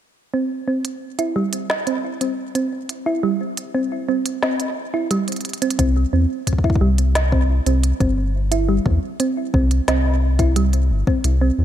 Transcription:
0.34 synth arpeggio sound C4
0.68 synth arpeggio sound C4
0.85 closed hi-hat
1.19 synth arpeggio sound E4, closed hi-hat
1.36 synth arpeggio sound G3
1.53 closed hi-hat
1.70 snare
1.87 synth arpeggio sound C4, closed hi-hat
2.21 synth arpeggio sound C4, closed hi-hat
2.55 synth arpeggio sound C4, closed hi-hat
2.89 closed hi-hat
3.06 synth arpeggio sound E4
3.23 synth arpeggio sound G3
3.57 closed hi-hat
3.74 synth arpeggio sound C4
4.09 synth arpeggio sound C4
4.26 closed hi-hat
4.43 synth arpeggio sound C4, snare
4.60 closed hi-hat
4.94 synth arpeggio sound E4
5.11 synth arpeggio sound G3, closed hi-hat
5.28 closed hi-hat
5.32 closed hi-hat
5.36 closed hi-hat
5.41 closed hi-hat
5.45 closed hi-hat
5.49 closed hi-hat
5.53 closed hi-hat
5.58 closed hi-hat
5.62 synth arpeggio sound C4, closed hi-hat
5.70 closed hi-hat
5.79 analog synth bass C2, synth arpeggio sound C4, kick, closed hi-hat
6.13 analog synth bass E2, synth arpeggio sound C4
6.47 kick, closed hi-hat
6.53 kick
6.58 kick
6.64 synth arpeggio sound E4, kick
6.70 kick
6.75 kick
6.81 analog synth bass C2, synth arpeggio sound G3
6.98 closed hi-hat
7.15 snare, closed hi-hat
7.32 synth arpeggio sound C4, kick
7.66 analog synth bass C2, synth arpeggio sound C4, closed hi-hat
7.83 closed hi-hat
8.00 analog synth bass G1, synth arpeggio sound C4, kick, closed hi-hat
8.52 synth arpeggio sound E4, closed hi-hat
8.69 synth arpeggio sound G3
8.86 analog synth bass E2, kick
9.20 synth arpeggio sound C4, closed hi-hat
9.54 analog synth bass C2, synth arpeggio sound C4, kick
9.71 closed hi-hat
9.88 analog synth bass C2, synth arpeggio sound C4, snare, closed hi-hat
10.39 synth arpeggio sound E4, kick, closed hi-hat
10.56 synth arpeggio sound G3, closed hi-hat
10.73 closed hi-hat
10.90 analog synth bass G1
11.07 synth arpeggio sound C4, kick
11.24 analog synth bass C2, closed hi-hat
11.41 synth arpeggio sound C4
11.58 analog synth bass E2

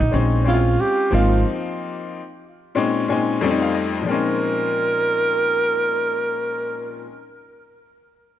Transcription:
Already playing: tenor saxophone D#4
0.00 upright bass A#1
0.12 upright bass A#1, upright piano G#3 C4 C#4 D#4
0.45 upright piano G#3 C4 C#4 E4, tenor saxophone F4
0.54 upright piano F4
0.81 tenor saxophone G4
1.11 upright bass G#1, upright piano F3 A#3 C4 D#4, tenor saxophone F4
2.75 upright piano A#2 G#3 C4 C#4 D#4
3.08 upright piano A#2 G#3 C4 C#4 D#4 G#5
3.41 upright piano F2 G3 A3 C4 C#4 G5
3.50 upright piano D#4
3.62 upright piano F5
3.75 upright piano D#5
4.01 upright piano A#2 F3
4.06 upright piano G#3 C4
4.11 upright piano C#4 D#4, tenor saxophone A#4

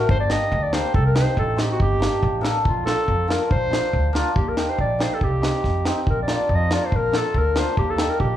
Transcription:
0.09 upright bass G1, clarinet C5, kick
0.20 clarinet D5
0.30 hammered dulcimer A#3 D4 G4, clarinet D#5, snare
0.52 upright bass D2, kick
0.62 clarinet D5
0.73 hammered dulcimer A#3 D4 G4, clarinet C5, snare
0.94 upright bass C2, clarinet A4, kick
1.06 clarinet A#4
1.15 hammered dulcimer C4 D#4 G4, clarinet C5, snare
1.37 upright bass A1, clarinet A4, kick
1.56 hammered dulcimer C4 D#4 G4, snare
1.61 clarinet G4
1.71 clarinet F#4
1.80 upright bass G1, clarinet G4, kick
1.99 hammered dulcimer A#3 D4 G4, snare
2.23 upright bass A1, kick
2.41 hammered dulcimer A#3 D4 A4, snare
2.64 upright bass A#1, clarinet F4, kick
2.85 hammered dulcimer A#3 D4 F4, clarinet A4, snare
3.08 upright bass F2, kick
3.28 hammered dulcimer A#3 D4 F4, clarinet A#4, snare
3.51 upright bass A#1, clarinet C5, kick
3.70 hammered dulcimer A#3 D4 F4, snare
3.93 upright bass D2, kick
4.13 hammered dulcimer A#3 D4 F4, snare
4.36 upright bass D#2, clarinet G4, kick
4.49 clarinet A#4
4.57 hammered dulcimer A#3 D#4 G4, snare
4.70 clarinet C5
4.79 upright bass A#1, clarinet D5, kick
4.99 hammered dulcimer A#3 D#4 G4, clarinet C5, snare
5.14 clarinet A4
5.21 upright bass C2, clarinet G4, kick
5.42 hammered dulcimer C4 D#4 G4, snare
5.64 upright bass F2, kick, snare
5.85 hammered dulcimer C4 D#4 G4, snare
6.07 upright bass A#1, clarinet A#4, kick
6.22 clarinet D5
6.28 hammered dulcimer A#3 D4 F4, snare
6.34 clarinet D5
6.49 upright bass F2, kick
6.55 clarinet D#5
6.71 hammered dulcimer A#3 D4 F4, clarinet D5, snare
6.85 clarinet C5
6.92 upright bass A#1, clarinet A#4, kick
7.12 hammered dulcimer A#3 D4 F4, snare
7.17 clarinet A4
7.34 upright bass D2, clarinet A#4, kick
7.56 hammered dulcimer A#3 D4 F4, clarinet C5, snare
7.77 upright bass D#2, clarinet G4, kick
7.90 clarinet A4
7.96 hammered dulcimer A#3 D#4 G4, snare
8.10 clarinet A#4
8.20 upright bass A#1, clarinet G4, kick

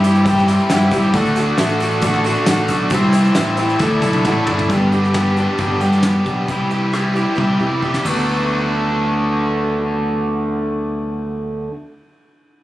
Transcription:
Already playing: picked electric bass G2, tonewheel organ C5 G5 E6
0.04 overdriven electric guitar C3 E3 G3, twelve-string acoustic guitar C4 E4 G4, closed hi-hat, shaker
0.15 closed hi-hat, shaker
0.25 twelve-string acoustic guitar C3 G3 C4 E4 G4, overdriven electric guitar E3, reed electric piano G4 C5 E5 G5, kick, closed hi-hat, shaker
0.38 snare
0.47 overdriven electric guitar E3 G3, twelve-string acoustic guitar C4 E4 G4, reed electric piano E5, snare, closed hi-hat, shaker
0.52 overdriven electric guitar C3
0.58 closed hi-hat
0.69 picked electric bass G2, overdriven electric guitar E3, twelve-string acoustic guitar G3 C4 E4 G4, reed electric piano G4 C5 E5 F#5 G5, snare, closed hi-hat, shaker
0.81 closed hi-hat
0.91 picked electric bass G2, twelve-string acoustic guitar C4 E4 G4, reed electric piano C6, kick, closed hi-hat, shaker
0.96 overdriven electric guitar G3
1.02 closed hi-hat
1.13 picked electric bass D2, twelve-string acoustic guitar D3 A3 D4 F#4 A4, reed electric piano F#4 A4 D5 F#5, tonewheel organ A4 F#5 D6, kick, closed hi-hat, shaker
1.25 closed hi-hat
1.36 twelve-string acoustic guitar F#4 A4, closed hi-hat, shaker
1.40 overdriven electric guitar A3, twelve-string acoustic guitar D4
1.57 picked electric bass A1, overdriven electric guitar D3, twelve-string acoustic guitar A3 D4 F#4, reed electric piano F#4 A4 D5 E5, snare, closed hi-hat, shaker
1.62 twelve-string acoustic guitar A4
1.69 closed hi-hat
1.80 twelve-string acoustic guitar D4 F#4 A4, closed hi-hat, shaker
1.84 overdriven electric guitar D3 A3
1.91 closed hi-hat, shaker
2.02 twelve-string acoustic guitar D3 A3 D4 F#4 A4, reed electric piano F#4 A4 D5 F#5, kick, closed hi-hat, shaker
2.14 snare
2.24 overdriven electric guitar A3, twelve-string acoustic guitar F#4 A4, closed hi-hat, shaker
2.28 overdriven electric guitar D3, twelve-string acoustic guitar D4
2.35 closed hi-hat
2.46 picked electric bass A1, overdriven electric guitar D3, twelve-string acoustic guitar A3 D4 F#4 A4, reed electric piano F#4 A4 D5 F#5, snare, closed hi-hat, shaker
2.57 closed hi-hat
2.68 picked electric bass B1, twelve-string acoustic guitar F#4 A4, kick, closed hi-hat, shaker
2.73 overdriven electric guitar A3, twelve-string acoustic guitar D4
2.90 picked electric bass C2, twelve-string acoustic guitar C3 G3 C4, overdriven electric guitar E3, reed electric piano E4 G4 C5 E5, tonewheel organ C5 G5 E6, kick, closed hi-hat, shaker
2.94 twelve-string acoustic guitar E4 C5
3.13 twelve-string acoustic guitar C4 E4 C5, closed hi-hat, shaker
3.17 overdriven electric guitar G3
3.24 closed hi-hat, shaker
3.35 picked electric bass A1, overdriven electric guitar E3, twelve-string acoustic guitar G3 C4 E4 C5, reed electric piano E4 G4 C5 E5, snare, closed hi-hat, shaker
3.57 overdriven electric guitar G3, twelve-string acoustic guitar C4 E4 C5, closed hi-hat, shaker
3.61 overdriven electric guitar C3 E3
3.69 closed hi-hat, shaker
3.79 picked electric bass D2, twelve-string acoustic guitar D3 A3 D4 E4 A4, reed electric piano E4 A4 D5 E5, tonewheel organ D5 A5, kick, snare, shaker
4.02 picked electric bass B1, overdriven electric guitar D3 A3, twelve-string acoustic guitar E4 A4, high tom, shaker
4.06 twelve-string acoustic guitar D4
4.13 high tom, shaker
4.24 picked electric bass A1, overdriven electric guitar D3, twelve-string acoustic guitar A3 D4, reed electric piano E4 A4 D5 F#5, mid tom, shaker
4.28 twelve-string acoustic guitar E4 A4
4.47 picked electric bass G1, twelve-string acoustic guitar E4 A4, floor tom
4.51 overdriven electric guitar A3, twelve-string acoustic guitar D4
4.59 floor tom, shaker
4.70 picked electric bass G1, twelve-string acoustic guitar G2 D3 G3 B3 D4 G4, kick, closed hi-hat
4.91 twelve-string acoustic guitar G3 B3 D4 G4, closed hi-hat
5.04 snare
5.14 twelve-string acoustic guitar G3 B3 D4, snare, closed hi-hat
5.19 twelve-string acoustic guitar G4
5.37 twelve-string acoustic guitar G3 B3 D4 G4, closed hi-hat
5.58 picked electric bass G1, twelve-string acoustic guitar G2 D3 G3 B3 D4 G4, kick, closed hi-hat
5.80 picked electric bass G2, twelve-string acoustic guitar G3 B3 D4 G4, closed hi-hat
5.92 snare
6.03 twelve-string acoustic guitar G3 B3 D4 G4, snare, closed hi-hat
6.24 picked electric bass B1, twelve-string acoustic guitar G3 B3 D4 G4, kick, closed hi-hat
6.47 picked electric bass C2, twelve-string acoustic guitar C3 G3 C4 E4 G4, overdriven electric guitar E3, kick, closed hi-hat
6.68 twelve-string acoustic guitar C4 E4 G4, closed hi-hat
6.74 overdriven electric guitar G3
6.92 overdriven electric guitar E3, twelve-string acoustic guitar G3 C4 E4 G4, cross-stick, closed hi-hat
7.13 twelve-string acoustic guitar C4 E4 G4, closed hi-hat
7.19 overdriven electric guitar G3
7.35 picked electric bass C2, twelve-string acoustic guitar C3 G3 C4 E4 G4, kick
7.40 overdriven electric guitar E3 G3 E4 G4
7.59 picked electric bass C3, twelve-string acoustic guitar C4 E4 G4, kick
7.64 overdriven electric guitar G3
7.82 overdriven electric guitar E3, twelve-string acoustic guitar G3 C4 E4 G4, kick
7.94 snare
8.00 twelve-string acoustic guitar D3
8.04 picked electric bass D2, overdriven electric guitar D3 A3 F#4, twelve-string acoustic guitar F#3 B3, kick, ride
8.10 twelve-string acoustic guitar D4 A4

